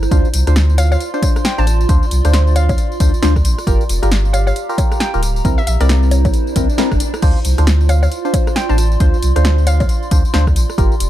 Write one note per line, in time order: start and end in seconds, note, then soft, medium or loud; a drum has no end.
0.00 0.12 E4 medium
0.00 1.24 C5 medium
0.00 0.12 A#5 medium
0.00 cross-stick medium
0.00 tambourine soft
0.11 0.21 D2 loud
0.11 0.28 D4 medium
0.11 4.39 F4 medium
0.11 0.28 F4 medium
0.11 0.28 C5 loud
0.11 kick loud
0.11 closed hi-hat medium
0.11 tambourine soft
0.25 tambourine soft
0.33 0.43 C2 medium
0.33 4.39 C6 medium
0.33 closed hi-hat loud
0.33 tambourine medium
0.40 4.39 D5 medium
0.47 0.96 D2 loud
0.47 0.55 D4 medium
0.47 0.55 F4 medium
0.47 0.55 C5 medium
0.47 cross-stick medium
0.47 closed hi-hat medium
0.47 tambourine soft
0.56 snare loud
0.56 closed hi-hat medium
0.56 tambourine soft
0.69 tambourine soft
0.78 0.87 F5 medium
0.78 closed hi-hat medium
0.78 tambourine medium
0.78 high bongo medium
0.92 0.97 F5 medium
0.92 tambourine soft
0.92 high bongo medium
1.00 closed hi-hat medium
1.00 tambourine soft
1.14 1.55 D4 medium
1.14 1.55 F4 medium
1.14 1.55 C5 loud
1.14 tambourine soft
1.22 kick loud
1.22 closed hi-hat loud
1.22 tambourine medium
1.22 high bongo medium
1.36 cross-stick medium
1.36 tambourine soft
1.45 1.56 G5 medium
1.45 snare loud
1.45 closed hi-hat medium
1.45 tambourine soft
1.58 1.85 A1 medium
1.58 1.66 D4 medium
1.58 1.66 F4 medium
1.58 1.66 C5 medium
1.58 1.75 A5 medium
1.58 tambourine soft
1.67 cross-stick soft
1.67 closed hi-hat medium
1.67 tambourine medium
1.81 tambourine soft
1.89 1.99 D2 loud
1.89 2.06 D4 medium
1.89 2.06 F4 medium
1.89 2.06 C5 medium
1.89 kick loud
1.89 closed hi-hat medium
1.89 tambourine soft
2.03 tambourine soft
2.11 2.21 C2 medium
2.11 closed hi-hat loud
2.11 tambourine medium
2.25 2.74 D2 loud
2.25 2.98 D4 medium
2.25 2.98 F4 medium
2.25 2.98 C5 loud
2.25 cross-stick medium
2.25 closed hi-hat medium
2.25 tambourine soft
2.33 snare loud
2.33 closed hi-hat medium
2.33 tambourine soft
2.47 tambourine soft
2.56 3.00 F5 loud
2.56 closed hi-hat medium
2.56 tambourine medium
2.56 high bongo medium
2.69 kick loud
2.69 closed hi-hat soft
2.69 tambourine soft
2.69 high bongo medium
2.78 closed hi-hat medium
2.78 tambourine soft
2.92 tambourine soft
3.00 3.10 D2 loud
3.00 3.12 D4 medium
3.00 3.12 F4 medium
3.00 3.12 C5 medium
3.00 kick loud
3.00 closed hi-hat loud
3.00 tambourine medium
3.14 tambourine soft
3.23 3.46 D2 medium
3.23 3.34 D4 medium
3.23 3.34 F4 medium
3.23 3.34 C5 loud
3.23 snare loud
3.23 closed hi-hat medium
3.23 tambourine soft
3.36 kick medium
3.36 cross-stick soft
3.36 tambourine soft
3.45 3.54 A1 medium
3.45 closed hi-hat loud
3.45 tambourine medium
3.58 cross-stick medium
3.58 tambourine soft
3.67 3.77 G1 loud
3.67 3.84 F4 medium
3.67 3.84 G4 medium
3.67 6.17 G4 medium
3.67 3.84 A#4 loud
3.67 kick loud
3.67 closed hi-hat medium
3.67 tambourine soft
3.81 tambourine soft
3.85 5.45 F5 medium
3.89 3.99 F1 medium
3.89 closed hi-hat loud
3.89 tambourine medium
4.03 4.52 G1 loud
4.03 4.10 F4 medium
4.03 4.10 G4 medium
4.03 4.10 A#4 medium
4.03 cross-stick medium
4.03 closed hi-hat medium
4.03 tambourine soft
4.12 snare loud
4.12 closed hi-hat medium
4.12 tambourine soft
4.25 tambourine soft
4.33 4.42 F5 medium
4.33 7.23 A#5 medium
4.33 closed hi-hat medium
4.33 tambourine medium
4.33 high bongo medium
4.47 4.53 F5 medium
4.47 tambourine soft
4.47 high bongo medium
4.56 closed hi-hat medium
4.56 tambourine soft
4.69 5.11 F4 medium
4.69 5.11 G4 medium
4.69 5.11 A#4 loud
4.69 tambourine soft
4.78 kick loud
4.78 closed hi-hat loud
4.78 tambourine medium
4.78 high bongo medium
4.92 cross-stick medium
4.92 tambourine soft
5.00 5.11 G5 medium
5.00 snare loud
5.00 closed hi-hat medium
5.00 tambourine soft
5.14 5.41 D1 medium
5.14 5.21 F4 medium
5.14 5.22 G4 medium
5.14 5.22 A#4 medium
5.14 tambourine soft
5.23 cross-stick soft
5.23 closed hi-hat loud
5.23 tambourine medium
5.36 tambourine soft
5.45 5.54 C2 loud
5.45 5.62 C4 medium
5.45 5.62 E4 medium
5.45 7.23 E4 medium
5.45 5.62 A#4 medium
5.45 kick loud
5.45 closed hi-hat medium
5.45 tambourine soft
5.58 5.64 E5 medium
5.58 tambourine soft
5.67 5.77 A#1 medium
5.67 8.33 C5 medium
5.67 5.76 E5 medium
5.67 closed hi-hat loud
5.67 tambourine medium
5.80 6.30 C2 loud
5.80 6.54 C4 medium
5.80 6.54 E4 medium
5.80 6.54 A#4 medium
5.80 6.25 D5 medium
5.80 cross-stick medium
5.80 closed hi-hat medium
5.80 tambourine soft
5.89 snare loud
5.89 closed hi-hat medium
5.89 tambourine soft
6.03 tambourine soft
6.11 closed hi-hat loud
6.11 tambourine medium
6.11 high bongo medium
6.25 kick loud
6.25 closed hi-hat soft
6.25 tambourine soft
6.25 high bongo medium
6.34 closed hi-hat medium
6.34 tambourine soft
6.34 swell medium
6.47 tambourine soft
6.56 6.66 C2 loud
6.56 6.68 C4 medium
6.56 6.68 E4 medium
6.56 6.68 A#4 medium
6.56 kick loud
6.56 closed hi-hat loud
6.56 tambourine medium
6.69 tambourine soft
6.78 6.90 C4 loud
6.78 6.90 E4 medium
6.78 6.90 A#4 loud
6.78 cross-stick medium
6.78 snare loud
6.78 closed hi-hat medium
6.78 tambourine soft
6.91 6.98 G1 medium
6.91 kick medium
6.91 cross-stick medium
6.91 tambourine soft
7.00 closed hi-hat loud
7.00 tambourine medium
7.14 cross-stick medium
7.14 tambourine soft
7.22 7.32 D2 loud
7.22 7.40 D4 medium
7.22 7.40 F4 medium
7.22 11.10 F4 medium
7.22 7.40 C5 loud
7.22 kick loud
7.22 closed hi-hat medium
7.22 crash medium
7.22 tambourine soft
7.36 11.10 C6 medium
7.36 tambourine soft
7.45 7.54 C2 medium
7.45 closed hi-hat loud
7.45 tambourine medium
7.53 11.10 D5 medium
7.58 8.07 D2 loud
7.58 7.66 D4 medium
7.58 7.66 F4 medium
7.58 7.66 C5 medium
7.58 cross-stick medium
7.58 closed hi-hat medium
7.58 tambourine soft
7.67 snare loud
7.67 closed hi-hat medium
7.67 tambourine soft
7.81 tambourine soft
7.89 7.98 F5 medium
7.89 closed hi-hat medium
7.89 tambourine medium
7.89 high bongo medium
8.03 8.08 F5 medium
8.03 tambourine soft
8.03 high bongo medium
8.12 closed hi-hat medium
8.12 tambourine soft
8.25 8.66 D4 medium
8.25 8.66 F4 medium
8.25 8.66 C5 medium
8.25 tambourine soft
8.34 kick loud
8.34 closed hi-hat loud
8.34 tambourine medium
8.34 high bongo medium
8.47 cross-stick medium
8.47 tambourine soft
8.56 8.67 G5 loud
8.56 snare loud
8.56 closed hi-hat medium
8.56 tambourine soft
8.69 8.96 A1 medium
8.69 8.77 D4 medium
8.69 8.77 F4 medium
8.69 8.77 C5 medium
8.69 8.86 A5 medium
8.69 tambourine soft
8.78 cross-stick soft
8.78 closed hi-hat loud
8.78 tambourine medium
8.92 tambourine soft
9.00 9.10 D2 loud
9.00 9.17 D4 medium
9.00 9.17 F4 medium
9.00 9.17 C5 medium
9.00 kick loud
9.00 closed hi-hat medium
9.00 tambourine soft
9.14 tambourine soft
9.23 9.32 C2 medium
9.23 closed hi-hat loud
9.23 tambourine medium
9.36 9.85 D2 loud
9.36 10.09 D4 medium
9.36 10.09 F4 medium
9.36 10.09 C5 medium
9.36 cross-stick medium
9.36 closed hi-hat medium
9.36 tambourine soft
9.45 snare loud
9.45 closed hi-hat medium
9.45 tambourine soft
9.58 tambourine soft
9.67 10.11 F5 loud
9.67 closed hi-hat loud
9.67 tambourine medium
9.67 high bongo medium
9.80 kick loud
9.80 closed hi-hat soft
9.80 tambourine soft
9.80 high bongo medium
9.89 closed hi-hat medium
9.89 tambourine soft
10.03 tambourine soft
10.11 10.21 D2 loud
10.11 10.23 D4 medium
10.11 10.23 F4 medium
10.11 10.23 C5 medium
10.11 kick loud
10.11 closed hi-hat loud
10.11 tambourine medium
10.25 tambourine soft
10.34 10.58 D2 medium
10.34 10.46 D4 medium
10.34 10.46 F4 medium
10.34 10.46 C5 loud
10.34 snare loud
10.34 closed hi-hat medium
10.34 tambourine soft
10.47 kick medium
10.47 cross-stick medium
10.47 tambourine soft
10.56 10.66 A1 loud
10.56 closed hi-hat loud
10.56 tambourine medium
10.70 cross-stick medium
10.70 tambourine soft
10.78 10.88 G1 loud
10.78 10.95 F4 medium
10.78 10.95 G4 medium
10.78 11.10 G4 medium
10.78 10.95 A#4 loud
10.78 kick loud
10.78 closed hi-hat medium
10.78 tambourine soft
10.92 tambourine soft
11.00 11.10 F1 medium
11.00 11.10 F5 medium
11.00 closed hi-hat loud
11.00 tambourine medium